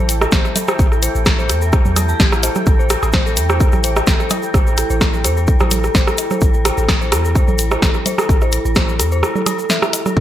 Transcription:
Already playing: sub bass A1, ambient pad E4 A4 G5
0.09 closed hi-hat, shaker
0.21 synth bell A4, cross-stick, low woodblock, shaker
0.32 sub bass A1, synth bell C5, kick, snare, shaker
0.45 cross-stick, shaker
0.56 synth bell A4, closed hi-hat, low conga, low woodblock, shaker
0.68 synth bell C5, cross-stick, cowbell, shaker
0.79 sub bass A1, kick, shaker
0.92 synth bell A4, cross-stick, shaker
1.03 synth bell C5, closed hi-hat, shaker
1.15 sub bass A1, shaker
1.26 synth bell A4, kick, cross-stick, snare, shaker
1.39 synth bell C5, shaker
1.49 sub bass E2, cross-stick, closed hi-hat, shaker
1.61 synth bell A4, shaker
1.73 synth bell C5, kick, cross-stick, shaker
1.85 sub bass E2, low conga, shaker
1.96 synth bell A4, cross-stick, closed hi-hat, cowbell, low conga, shaker
2.09 synth bell A5, shaker
2.20 sub bass A1, synth bell G4, kick, snare, shaker
2.32 synth bell E4, cross-stick, shaker
2.43 synth bell C5, closed hi-hat, low woodblock, shaker
2.55 cross-stick, low conga, shaker
2.66 sub bass A1, synth bell A4, kick, cross-stick, shaker
2.79 synth bell C5, shaker
2.90 synth bell A4, cross-stick, closed hi-hat, shaker
3.03 sub bass A1, synth bell A4, cowbell, shaker
3.13 synth bell C5, kick, cross-stick, snare, shaker
3.26 synth bell A4, shaker
3.37 sub bass E2, synth bell A4, closed hi-hat, shaker
3.49 synth bell C5, cross-stick, shaker
3.60 synth bell A4, kick, shaker
3.72 sub bass A1, synth bell A4, cross-stick, low conga, shaker
3.84 synth bell C5, closed hi-hat, shaker
3.96 synth bell A4, cross-stick, low woodblock, shaker
4.07 sub bass A1, synth bell A4, kick, snare, shaker
4.20 synth bell C5, cross-stick, shaker
4.30 synth bell A4, closed hi-hat, cowbell, low conga, low woodblock, shaker
4.43 synth bell A4, shaker
4.54 sub bass A1, synth bell C5, kick, cross-stick, shaker
4.67 synth bell A4, shaker
4.77 synth bell A4, cross-stick, closed hi-hat, shaker
4.90 sub bass A1, synth bell C5, shaker
5.01 synth bell A4, kick, cross-stick, snare, shaker
5.14 synth bell A4, shaker
5.24 sub bass E2, synth bell C5, cross-stick, closed hi-hat, shaker
5.37 synth bell A4, shaker
5.47 synth bell A4, kick, shaker
5.60 sub bass A1, synth bell C5, cross-stick, cowbell, low conga, shaker
5.71 synth bell A4, closed hi-hat, low conga, shaker
5.84 synth bell A4, cross-stick, shaker
5.95 sub bass A1, synth bell C5, kick, snare, shaker
6.07 synth bell A4, cross-stick, shaker
6.18 synth bell A4, closed hi-hat, low woodblock, shaker
6.30 synth bell C5, cross-stick, low conga, shaker
6.41 sub bass A1, synth bell A4, kick, shaker
6.54 synth bell A4, shaker
6.65 synth bell C5, cross-stick, closed hi-hat, shaker
6.78 sub bass A1, synth bell A4, shaker
6.89 synth bell A4, kick, cross-stick, snare, cowbell, shaker
7.01 synth bell C5, shaker
7.12 sub bass E2, synth bell A4, cross-stick, closed hi-hat, shaker
7.25 synth bell A4, shaker
7.35 synth bell C5, kick, cross-stick, shaker
7.48 sub bass A1, synth bell A4, low conga, shaker
7.58 synth bell A4, closed hi-hat, shaker
7.71 synth bell C5, cross-stick, low woodblock, shaker
7.82 sub bass A1, synth bell A4, kick, snare, shaker
7.94 synth bell A4, cross-stick, shaker
8.06 synth bell C5, closed hi-hat, low conga, low woodblock, shaker
8.18 synth bell A4, cross-stick, cowbell, shaker
8.29 sub bass A1, synth bell A4, kick, shaker
8.41 synth bell C5, cross-stick, low woodblock, shaker
8.52 synth bell A4, closed hi-hat, shaker
8.65 sub bass A1, synth bell A4, shaker
8.75 synth bell C5, kick, cross-stick, snare, shaker
8.89 synth bell A4, shaker
8.99 sub bass E2, synth bell A4, cross-stick, closed hi-hat, shaker
9.12 synth bell C5, shaker
9.23 synth bell A4, cross-stick, shaker
9.36 synth bell A4, low conga, shaker
9.46 synth bell A4, cross-stick, closed hi-hat, cowbell, low conga, shaker
9.59 synth bell A4, shaker
9.70 synth bell E5, snare, shaker
9.82 synth bell E5, cross-stick, shaker
9.93 closed hi-hat, low woodblock, shaker
10.06 synth bell A4, cross-stick, low conga, shaker
10.17 sub bass A1, ambient pad E4, synth bell A4, kick

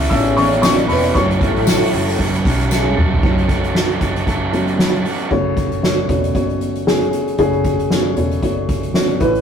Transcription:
Already playing: upright piano E3 A3 C#4 C#5 C#6, overdriven electric guitar A3 C#4 E4 A4
0.00 hi-hat pedal, open hi-hat
0.10 fingered electric bass A1, overdriven electric guitar A2 E3 A3 C#4 E4 A4, french horn section C#3 C#4, upright piano E5 E6, kick, hi-hat pedal, open hi-hat
0.26 hi-hat pedal, open hi-hat
0.37 upright piano E3 A3 C#4 C#5 C#6, overdriven electric guitar A3 C#4 E4 A4, hi-hat pedal, open hi-hat
0.52 hi-hat pedal, open hi-hat
0.62 overdriven electric guitar A3 C#4 E4 A4, upright piano C#5 C#6, snare, hi-hat pedal, open hi-hat, tambourine
0.78 hi-hat pedal
0.88 fingered electric bass E1, overdriven electric guitar A3 C#4 E4 A4, upright piano B4 B5, hi-hat pedal, open hi-hat
1.04 open hi-hat
1.14 fingered electric bass F#1, overdriven electric guitar F#2 C#3 F#3 A3 C#4 A4, french horn section A2 A3, upright piano F#3 A3 C#4 C#5 C#6, kick, hi-hat pedal, open hi-hat
1.30 hi-hat pedal
1.40 overdriven electric guitar F#3 A3 C#4 A4, kick, hi-hat pedal, open hi-hat
1.56 fingered electric bass A1, open hi-hat
1.67 overdriven electric guitar F#3 A3 C#4 A4, snare, hi-hat pedal, open hi-hat, tambourine
1.82 hi-hat pedal, open hi-hat
1.92 fingered electric bass F#1, overdriven electric guitar F#3 A3 C#4 A4, hi-hat pedal, open hi-hat
2.08 hi-hat pedal, open hi-hat
2.18 overdriven electric guitar F#2 C#3 F#3 A3 C#4 A4, kick, hi-hat pedal, open hi-hat
2.34 snare, hi-hat pedal, open hi-hat
2.44 fingered electric bass B1, overdriven electric guitar F#3 A3 C#4 A4, kick, hi-hat pedal, open hi-hat
2.60 hi-hat pedal, open hi-hat
2.70 french horn section C#3 C#4, overdriven electric guitar F#3 A3 C#4 A4, snare, tambourine
2.86 high tom
2.96 fingered electric bass E1, overdriven electric guitar F#3 A3 C#4 A4, mid tom
3.12 floor tom
3.23 fingered electric bass F#1, overdriven electric guitar F#2 C#3 F#3 A3 C#4 A4, upright piano F#3 A3 C#4, kick, crash
3.38 closed hi-hat
3.48 overdriven electric guitar F#3 A3 C#4 A4, kick, closed hi-hat
3.64 closed hi-hat
3.75 overdriven electric guitar F#2 C#3 F#3 A3 C#4 A4, snare
3.90 closed hi-hat
4.01 fingered electric bass F#1, overdriven electric guitar F#3 A3 C#4 A4, kick, closed hi-hat
4.16 closed hi-hat
4.26 fingered electric bass F#1, overdriven electric guitar F#3 A3 C#4 A4, kick, closed hi-hat
4.52 upright piano F#3 A3 C#4, overdriven electric guitar F#3 A3 C#4 A4, closed hi-hat
4.67 closed hi-hat
4.78 overdriven electric guitar F#2 C#3 F#3 A3 C#4 A4, snare
4.94 closed hi-hat
5.04 overdriven electric guitar F#3 A3 C#4 A4, open hi-hat
5.20 closed hi-hat
5.31 fingered electric bass F#1, upright piano C#3 A3 C#4 F#4 C#5, kick, crash
5.57 kick, closed hi-hat
5.72 fingered electric bass F#1, closed hi-hat
5.83 upright piano A3 C#4 F#4 C#5, snare
6.08 fingered electric bass E1, upright piano A3 C#4 F#4 C#5, kick, closed hi-hat
6.24 closed hi-hat
6.35 fingered electric bass F#1, upright piano A3 C#4 F#4 C#5, kick, closed hi-hat
6.50 closed hi-hat
6.61 closed hi-hat
6.76 closed hi-hat
6.87 upright piano A3 C#4 F#4 G#4, snare
7.02 closed hi-hat
7.13 closed hi-hat
7.28 closed hi-hat
7.38 fingered electric bass F#1, upright piano C#3 A3 C#4 F#4 G#4, kick, closed hi-hat
7.53 closed hi-hat
7.65 kick, closed hi-hat
7.79 fingered electric bass F#1, closed hi-hat
7.90 upright piano A3 C#4 F#4 C#5, snare
8.17 fingered electric bass E1, upright piano A3 C#4 F#4 C#5, closed hi-hat
8.31 closed hi-hat
8.42 fingered electric bass F#1, upright piano A3 C#4 F#4 C#5, kick, closed hi-hat
8.69 kick, closed hi-hat
8.83 closed hi-hat
8.94 upright piano A3 C#4 F#4 C#5, snare
9.09 closed hi-hat
9.20 fingered electric bass A1, upright piano A2 E3 A3 C#4 E4 B4, kick, closed hi-hat
9.35 closed hi-hat

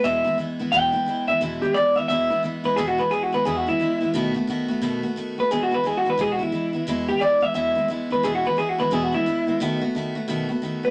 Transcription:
0.04 steel-string acoustic guitar E2 B2 E3 G#3 B3 E4, clean electric guitar E5
0.24 steel-string acoustic guitar E3 G#3 B3 E4
0.38 steel-string acoustic guitar E3 G#3 B3 E4
0.59 steel-string acoustic guitar E3 G#3 B3 E4
0.72 steel-string acoustic guitar E2 B2 E3 G#3 B3 E4, clean electric guitar G5
0.92 steel-string acoustic guitar E3 G#3 B3 E4
1.06 steel-string acoustic guitar E3 G#3 B3 E4
1.28 steel-string acoustic guitar E3 G#3 B3 E4, clean electric guitar E5
1.41 steel-string acoustic guitar E2 B2 E3 G#3 B3 E4
1.62 steel-string acoustic guitar E3 G#3 B3 E4, clean electric guitar G4
1.74 steel-string acoustic guitar E3 G#3 B3 E4, clean electric guitar D5
1.96 steel-string acoustic guitar E3 G#3 B3 E4, clean electric guitar E5
2.08 steel-string acoustic guitar E2 B2 E3 G#3 B3 E4, clean electric guitar E5
2.30 steel-string acoustic guitar E3 G#3 B3 E4
2.43 steel-string acoustic guitar E3 G#3 B3 E4
2.64 steel-string acoustic guitar E3 G#3 B3 E4, clean electric guitar B4
2.76 steel-string acoustic guitar E2 B2 E3 G#3 B3 E4, clean electric guitar G#4
2.88 clean electric guitar F#4
2.98 steel-string acoustic guitar E3 G#3 B3 E4, clean electric guitar B4
3.11 steel-string acoustic guitar E3 G#3 B3 E4, clean electric guitar G#4
3.23 clean electric guitar F#4
3.32 steel-string acoustic guitar E3 G#3 B3 E4, clean electric guitar B4
3.45 steel-string acoustic guitar E2 B2 E3 G#3 B3 E4, clean electric guitar G#4
3.57 clean electric guitar F#4
3.66 steel-string acoustic guitar E3 G#3 B3 E4, clean electric guitar E4
3.79 steel-string acoustic guitar E3 G#3 B3 E4
4.01 steel-string acoustic guitar E3 G#3 B3 E4
4.14 steel-string acoustic guitar B2 D#3 A3 B3 F#4
4.34 steel-string acoustic guitar A3 B3 F#4
4.47 steel-string acoustic guitar D#3 A3 B3 F#4
4.68 steel-string acoustic guitar A3 B3 F#4
4.82 steel-string acoustic guitar B2 D#3 A3 B3 F#4
5.03 steel-string acoustic guitar A3 B3 F#4
5.16 steel-string acoustic guitar D#3 A3 B3 F#4
5.38 steel-string acoustic guitar A3 B3 F#4, clean electric guitar B4
5.51 steel-string acoustic guitar E2 B2 E3 G#3 B3 E4, clean electric guitar G#4
5.63 clean electric guitar F#4
5.71 steel-string acoustic guitar E3 G#3 B3 E4, clean electric guitar B4
5.84 steel-string acoustic guitar E3 G#3 B3 E4, clean electric guitar G#4
5.97 clean electric guitar F#4
6.05 steel-string acoustic guitar E3 G#3 B3 E4
6.10 clean electric guitar B4
6.17 steel-string acoustic guitar E2 B2 E3 G#3 B3 E4, clean electric guitar G#4
6.32 clean electric guitar F#4
6.39 steel-string acoustic guitar E3 G#3 B3 E4, clean electric guitar E4
6.52 steel-string acoustic guitar E3 G#3 B3 E4
6.73 steel-string acoustic guitar E3 G#3 B3 E4
6.87 steel-string acoustic guitar E2 B2 E3 G#3 B3 E4
7.08 steel-string acoustic guitar E3 G#3 B3 E4, clean electric guitar G4
7.20 steel-string acoustic guitar E3 G#3 B3 E4, clean electric guitar D5
7.41 steel-string acoustic guitar E3 G#3 B3 E4, clean electric guitar E5
7.54 steel-string acoustic guitar E2 B2 E3 G#3 B3 E4, clean electric guitar E5
7.75 steel-string acoustic guitar E3 G#3 B3 E4
7.88 steel-string acoustic guitar E3 G#3 B3 E4
8.10 steel-string acoustic guitar E3 G#3 B3 E4, clean electric guitar B4
8.23 steel-string acoustic guitar E2 B2 E3 G#3 B3 E4, clean electric guitar G#4
8.35 clean electric guitar F#4
8.45 steel-string acoustic guitar E3 G#3 B3 E4, clean electric guitar B4
8.57 steel-string acoustic guitar E3 G#3 B3 E4, clean electric guitar G#4
8.69 clean electric guitar F#4
8.78 steel-string acoustic guitar E3 G#3 B3 E4, clean electric guitar B4
8.91 steel-string acoustic guitar E2 B2 E3 G#3 B3 E4, clean electric guitar G#4
9.03 clean electric guitar F#4
9.12 steel-string acoustic guitar E3 G#3 B3 E4, clean electric guitar E4
9.26 steel-string acoustic guitar E3 G#3 B3 E4
9.47 steel-string acoustic guitar E3 G#3 B3 E4
9.60 steel-string acoustic guitar B2 D#3 A3 B3 F#4
9.81 steel-string acoustic guitar A3 B3 F#4
9.95 steel-string acoustic guitar D#3 A3 B3 F#4
10.15 steel-string acoustic guitar A3 B3 F#4
10.28 steel-string acoustic guitar B2 D#3 A3 B3 F#4
10.49 steel-string acoustic guitar A3 B3 F#4
10.62 steel-string acoustic guitar D#3 A3 B3 F#4
10.83 steel-string acoustic guitar A3 B3 F#4, clean electric guitar B4

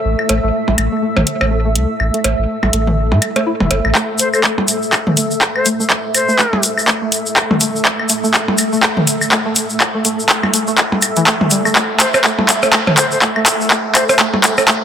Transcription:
Already playing: ambient pad A3 A4 E5 E6
0.05 sub bass A1
0.19 claves
0.29 sub bass A1, synth pluck A3, closed hi-hat, percussion blips
0.43 sub bass A1, synth pluck A3
0.68 sub bass A1, percussion blips
0.78 sub bass A1, closed hi-hat, claves
0.92 synth pluck A3
1.02 synth pluck A3
1.17 sub bass A1, high tom, percussion blips
1.27 closed hi-hat
1.41 sub bass A1, percussion blips, claves
1.51 synth pluck A3
1.65 synth pluck A3
1.75 sub bass C2, closed hi-hat
2.00 sub bass A1, claves
2.14 synth pluck A3, closed hi-hat
2.24 sub bass A1, synth pluck A3, closed hi-hat, percussion blips
2.38 sub bass A1
2.63 sub bass A1, percussion blips, claves
2.73 sub bass A1, synth pluck A3, closed hi-hat
2.87 synth pluck A3, high tom
3.12 sub bass A2, percussion blips
3.22 closed hi-hat, claves
3.36 synth pluck A3, closed hi-hat, percussion blips
3.46 synth pluck E4
3.60 sub bass E1, high tom, percussion blips
3.71 sub bass G1, closed hi-hat, percussion blips
3.85 sub bass A1, claves
3.95 synth pluck A3, kick, clap, shaker
4.18 flute C5, closed hi-hat, shaker
4.34 flute C5, claves, shaker
4.44 synth pluck A3, kick, clap, shaker
4.58 synth pluck A3, percussion blips
4.68 closed hi-hat, shaker
4.82 shaker
4.92 kick, clap, claves, shaker
5.07 synth pluck A3, high tom
5.17 synth pluck A3, closed hi-hat, shaker
5.31 shaker
5.41 kick, clap, shaker
5.55 flute C5, claves
5.66 synth pluck A3, closed hi-hat, shaker
5.80 synth pluck A3, shaker
5.90 kick, clap, shaker
6.15 flute C5, closed hi-hat, claves, shaker
6.29 synth pluck A3, shaker
6.39 synth pluck A3, kick, clap, shaker
6.53 percussion blips
6.63 closed hi-hat, shaker
6.78 claves, shaker
6.88 synth pluck A3, kick, clap, shaker
7.02 synth pluck A3
7.12 closed hi-hat, shaker
7.26 shaker
7.36 kick, clap, claves, shaker
7.51 synth pluck A3, high tom, percussion blips
7.61 synth pluck A3, closed hi-hat, shaker
7.76 shaker
7.85 kick, clap, shaker
8.00 claves
8.09 synth pluck A3, closed hi-hat, shaker
8.24 synth pluck A3, shaker
8.34 kick, clap, shaker
8.48 percussion blips
8.58 closed hi-hat, claves, shaker
8.73 synth pluck A3, shaker
8.83 synth pluck A3, kick, clap, shaker
8.97 high tom
9.07 closed hi-hat, shaker
9.21 claves, shaker
9.32 synth pluck A3, kick, clap, shaker
9.46 synth pluck A3
9.56 closed hi-hat, shaker
9.70 shaker
9.80 kick, clap, claves, shaker
9.95 synth pluck A3
10.05 synth pluck A3, closed hi-hat, shaker
10.20 shaker
10.29 kick, clap, shaker
10.43 percussion blips, claves
10.54 synth pluck A3, closed hi-hat, shaker
10.67 synth pluck A3, shaker
10.78 kick, clap, shaker
10.92 percussion blips
11.02 closed hi-hat, claves, shaker
11.16 synth pluck E3, closed hi-hat, shaker
11.26 synth pluck A3, kick, clap, shaker
11.41 high tom, percussion blips
11.51 synth pluck G3, closed hi-hat, shaker
11.65 synth pluck A3, claves, shaker
11.76 synth pluck A3, kick, clap, shaker
11.99 flute C5, clap, closed hi-hat, shaker
12.14 flute C5, percussion blips, claves, shaker
12.24 synth pluck A3, kick, clap, shaker
12.39 synth pluck A3, percussion blips
12.49 clap, closed hi-hat, shaker
12.63 percussion blips, shaker
12.73 synth pluck A3, kick, clap, claves, shaker
12.87 high tom, percussion blips
12.97 flute C5, clap, closed hi-hat, shaker
13.11 flute C5, shaker
13.22 synth pluck A3, kick, clap, shaker
13.36 synth pluck A3, claves
13.46 clap, closed hi-hat, shaker
13.61 shaker
13.71 synth pluck A3, kick, clap, shaker
13.95 flute C5, clap, closed hi-hat, claves, shaker
14.09 flute C5, percussion blips, shaker
14.19 synth pluck A3, kick, clap, shaker
14.34 synth pluck A3, percussion blips
14.44 clap, closed hi-hat, shaker
14.58 percussion blips, claves, shaker
14.68 synth pluck A3, kick, clap, shaker

